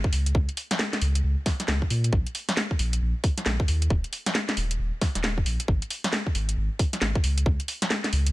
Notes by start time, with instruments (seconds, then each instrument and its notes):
0.04 kick
0.13 sub bass C#2, open hi-hat
0.26 closed hi-hat
0.35 sub bass C#2, kick
0.49 closed hi-hat
0.57 open hi-hat
0.71 snare, closed hi-hat
0.79 snare
0.93 snare, closed hi-hat
1.02 sub bass C#2, open hi-hat
1.15 closed hi-hat
1.24 sub bass C#2
1.46 kick, snare, open hi-hat
1.60 snare, closed hi-hat
1.68 sub bass C#2, snare
1.82 kick
1.90 sub bass A#2, open hi-hat
2.04 closed hi-hat
2.13 sub bass A#1, kick
2.27 closed hi-hat
2.35 open hi-hat
2.49 snare, closed hi-hat
2.57 snare
2.71 kick
2.79 sub bass A#1, open hi-hat
2.93 closed hi-hat
3.01 sub bass A#1
3.24 kick, open hi-hat
3.38 snare, closed hi-hat
3.46 sub bass A#1, snare
3.60 kick
3.68 sub bass D#2, open hi-hat
3.82 closed hi-hat
3.90 sub bass D#1, kick
4.04 closed hi-hat
4.13 open hi-hat
4.26 snare, closed hi-hat
4.35 snare
4.49 snare, closed hi-hat
4.57 sub bass D#1, open hi-hat
4.71 closed hi-hat
4.79 sub bass D#1
5.01 kick, snare, open hi-hat
5.15 sub bass D#1, snare, closed hi-hat
5.24 snare
5.38 kick
5.46 sub bass A#1, open hi-hat
5.60 closed hi-hat
5.68 sub bass G#1, kick
5.82 closed hi-hat
5.90 open hi-hat
6.04 snare, closed hi-hat
6.13 snare
6.27 kick
6.35 sub bass G#1, open hi-hat
6.49 closed hi-hat
6.57 sub bass G#1
6.79 kick, open hi-hat
6.93 snare, closed hi-hat
7.01 sub bass G#1, snare
7.15 kick
7.24 sub bass C#2, open hi-hat
7.38 closed hi-hat
7.46 sub bass C#2, kick
7.60 closed hi-hat
7.68 open hi-hat
7.82 snare, closed hi-hat
7.90 snare
8.04 snare, closed hi-hat
8.13 sub bass C#2, open hi-hat
8.27 closed hi-hat